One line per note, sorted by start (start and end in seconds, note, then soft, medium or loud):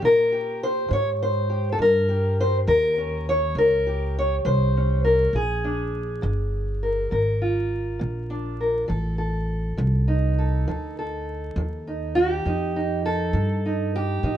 0.00 0.88 A#2 medium
0.00 0.55 D#3 medium
0.00 1.76 C#4 soft
0.05 0.62 A#4 medium
0.32 1.48 G4 soft
0.63 0.92 C5 loud
0.88 1.76 G#2 medium
0.88 1.43 D#3 medium
0.93 1.09 C#5 loud
1.23 1.72 C5 medium
1.50 1.76 G4 soft
1.72 1.79 A4 medium
1.78 2.65 G2 medium
1.78 2.32 D#3 medium
1.78 2.39 A#4 loud
2.09 3.85 G4 soft
2.40 2.56 C5 medium
2.67 3.54 D#2 medium
2.67 3.21 D#3 medium
2.67 3.27 A#4 medium
2.98 4.75 C#4 soft
3.29 3.57 C#5 medium
3.55 4.42 C#2 medium
3.55 4.10 D#3 medium
3.55 4.16 A#4 medium
3.87 5.31 G4 soft
4.19 4.35 C#5 medium
4.45 5.31 C2 medium
4.45 4.98 D#3 medium
4.45 5.04 C5 medium
4.77 5.31 C#4 soft
5.05 5.34 A#4 medium
5.33 6.19 A#1 medium
5.33 5.87 A#2 medium
5.33 7.12 G#4 medium
5.64 8.29 D4 soft
6.22 7.09 G1 medium
6.22 6.76 A#2 medium
6.83 7.11 A#4 soft
7.11 7.98 G#1 medium
7.11 7.64 A#2 medium
7.11 8.59 A#4 soft
7.42 10.07 F4 soft
7.99 8.87 A#1 medium
7.99 8.53 A#2 medium
8.30 8.85 D4 soft
8.61 8.86 A#4 soft
8.88 9.75 A1 medium
8.88 9.42 F3 medium
8.88 9.18 A4 soft
9.18 10.38 A4 soft
9.77 10.64 C2 medium
9.77 10.31 F3 medium
10.08 11.87 D#4 soft
10.39 10.68 A4 soft
10.68 11.53 D2 medium
10.68 11.20 F3 medium
10.68 10.97 A4 soft
10.99 12.15 A4 soft
11.56 12.42 D#2 medium
11.56 12.10 F3 medium
11.87 12.47 D#4 soft
12.15 13.04 G4 medium
12.46 13.31 F2 medium
12.46 12.99 F3 medium
12.46 12.76 D#4 soft
12.76 13.65 D#4 soft
13.06 13.94 A4 medium
13.33 14.20 G2 medium
13.33 13.87 F3 medium
13.66 14.24 D#4 soft
13.96 14.37 G4 medium
14.23 14.37 A2 medium
14.23 14.37 F3 medium
14.23 14.37 D#4 soft